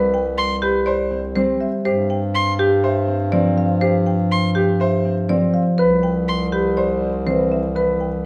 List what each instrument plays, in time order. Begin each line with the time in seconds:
Already playing: bass clarinet C2, harp G3 C4, marimba B4, grand piano B4
0.14 marimba G5
0.38 violin C6
0.62 marimba G4, grand piano B4
0.86 grand piano C5, marimba D5
1.11 harp C4
1.35 harp G3, grand piano C4, marimba C5
1.61 marimba E5
1.85 bass clarinet G2, grand piano G4, marimba C5
2.10 marimba G5
2.35 violin C6
2.59 grand piano G4, marimba G4
2.84 grand piano C5, marimba E5
3.07 harp C4
3.32 harp F3, grand piano C4, marimba D5
3.58 marimba F5
3.81 grand piano G4, marimba C5
4.06 marimba G5
4.32 violin C6
4.55 marimba G4, grand piano G4
4.80 grand piano C5, marimba E5
5.05 harp C4
5.28 harp F3, grand piano C4, marimba D5
5.54 marimba F5
5.78 bass clarinet C2, marimba B4, grand piano B4
6.03 marimba G5
6.28 violin C6
6.52 marimba G4, grand piano B4
6.77 grand piano C5, marimba D5
7.01 harp C4
7.26 harp E3, grand piano C4, marimba C5
7.52 marimba E5
7.75 grand piano B4, marimba B4
8.00 marimba G5